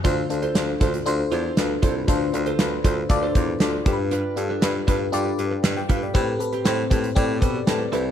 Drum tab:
HH |x-xxx-xxx-x-x-x-|x-xxx-x-x-x-x-x-|x-x-x-x-x-x-x-x-|x-xxx-xxx-x-x-x-|
SD |----o-------o---|----o-------o---|----o-------o---|----o-------o---|
BD |o-----o-------o-|o-----o-o-o---o-|------o-------o-|o-----o-o-o-----|